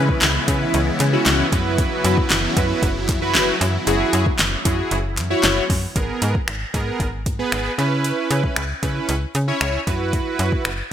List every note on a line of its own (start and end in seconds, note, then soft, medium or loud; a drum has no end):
0.00 0.13 C#3 loud
0.00 5.92 C#3 medium
0.00 5.92 E3 medium
0.00 1.48 G#3 medium
0.00 5.92 B3 medium
0.00 0.27 C#4 medium
0.00 0.27 E4 medium
0.00 1.50 E4 medium
0.00 0.27 B4 loud
0.09 kick medium
0.22 0.39 C#2 loud
0.22 snare medium
0.22 clap loud
0.22 clap medium
0.22 closed hi-hat medium
0.48 0.65 C#3 loud
0.48 0.80 C#4 medium
0.48 0.81 E4 medium
0.48 0.81 B4 medium
0.48 kick loud
0.48 closed hi-hat medium
0.74 0.91 C#2 loud
0.74 closed hi-hat medium
1.00 1.17 C#3 loud
1.00 clap medium
1.00 closed hi-hat medium
1.13 1.46 C#4 medium
1.13 1.46 E4 medium
1.13 1.46 F#4 loud
1.26 1.43 C#2 loud
1.26 snare loud
1.26 clap loud
1.26 clap medium
1.26 closed hi-hat medium
1.52 1.86 F#2 medium
1.52 5.92 F#3 medium
1.52 2.36 E4 medium
1.52 5.92 E4 loud
1.52 2.36 F#4 medium
1.52 2.36 B4 loud
1.52 kick loud
1.52 closed hi-hat medium
1.78 kick loud
1.78 closed hi-hat medium
2.05 2.21 F#2 loud
2.05 closed hi-hat medium
2.18 kick medium
2.30 2.48 F#1 loud
2.30 snare medium
2.30 clap loud
2.30 clap medium
2.30 closed hi-hat medium
2.56 2.74 F#2 loud
2.56 2.89 E4 medium
2.56 2.89 F#4 medium
2.56 2.89 B4 loud
2.56 kick medium
2.56 closed hi-hat medium
2.82 3.10 F#1 loud
2.82 kick loud
2.82 closed hi-hat medium
3.09 3.36 F#2 loud
3.09 kick loud
3.09 clap medium
3.09 closed hi-hat medium
3.22 3.54 E4 loud
3.22 3.54 F#4 medium
3.22 3.55 B4 loud
3.35 3.52 F#1 loud
3.35 snare medium
3.35 clap loud
3.35 clap medium
3.35 closed hi-hat medium
3.61 3.78 F#2 loud
3.61 closed hi-hat medium
3.87 4.04 F#1 loud
3.87 4.26 E4 medium
3.87 4.26 F#4 medium
3.87 4.26 G#4 loud
3.87 closed hi-hat medium
4.13 4.30 F#2 loud
4.13 closed hi-hat medium
4.26 kick medium
4.39 4.56 F#1 loud
4.39 snare medium
4.39 clap loud
4.39 clap medium
4.39 closed hi-hat medium
4.65 4.82 F#2 medium
4.65 4.98 E4 medium
4.65 4.98 F#4 medium
4.65 4.98 G#4 medium
4.65 kick medium
4.65 closed hi-hat medium
4.91 5.19 F#1 loud
4.91 closed hi-hat medium
5.17 5.34 F#2 loud
5.17 clap medium
5.17 closed hi-hat medium
5.30 5.63 E4 medium
5.30 5.63 F#4 medium
5.30 5.63 C#5 loud
5.43 5.61 F#1 loud
5.43 snare loud
5.43 clap loud
5.43 clap medium
5.43 closed hi-hat medium
5.70 5.87 F#2 loud
5.70 kick medium
5.70 open hi-hat medium
5.96 6.13 G#1 loud
5.96 6.35 B3 medium
5.96 6.35 G#4 medium
5.96 6.35 A#4 medium
5.96 kick loud
5.96 closed hi-hat medium
6.22 6.39 G#2 loud
6.22 closed hi-hat medium
6.35 kick medium
6.48 6.65 G#1 medium
6.48 finger snap loud
6.48 closed hi-hat medium
6.74 6.91 G#2 loud
6.74 7.06 B3 medium
6.74 7.07 G#4 medium
6.74 7.07 A#4 loud
6.74 kick medium
6.74 closed hi-hat medium
7.00 7.28 G#1 loud
7.00 kick loud
7.00 closed hi-hat medium
7.26 7.43 G#2 medium
7.26 kick medium
7.26 closed hi-hat medium
7.39 7.72 B3 loud
7.39 7.72 G#4 medium
7.39 7.72 B4 loud
7.52 7.69 G#1 loud
7.52 finger snap loud
7.52 closed hi-hat medium
7.78 8.12 C#3 loud
7.78 8.62 C#4 medium
7.78 8.62 E4 medium
7.78 8.62 B4 loud
7.78 closed hi-hat medium
8.04 closed hi-hat medium
8.31 8.48 C#3 loud
8.31 closed hi-hat medium
8.44 kick medium
8.56 8.74 C#2 medium
8.56 finger snap loud
8.56 closed hi-hat medium
8.82 9.00 C#3 loud
8.82 9.15 C#4 medium
8.82 9.15 E4 medium
8.82 9.15 B4 loud
8.82 kick medium
8.82 closed hi-hat medium
9.09 9.26 C#2 loud
9.09 closed hi-hat medium
9.35 9.52 C#3 loud
9.35 closed hi-hat medium
9.48 9.80 C#4 medium
9.48 9.81 E4 medium
9.48 9.81 C#5 loud
9.61 9.78 C#2 loud
9.61 finger snap loud
9.61 closed hi-hat medium
9.87 10.21 F#2 loud
9.87 10.70 E4 medium
9.87 10.71 F#4 medium
9.87 10.71 B4 loud
9.87 kick medium
9.87 closed hi-hat medium
10.13 kick loud
10.13 closed hi-hat medium
10.39 10.56 F#2 loud
10.39 closed hi-hat medium
10.52 kick medium
10.65 10.82 F#1 loud
10.65 finger snap loud
10.65 closed hi-hat medium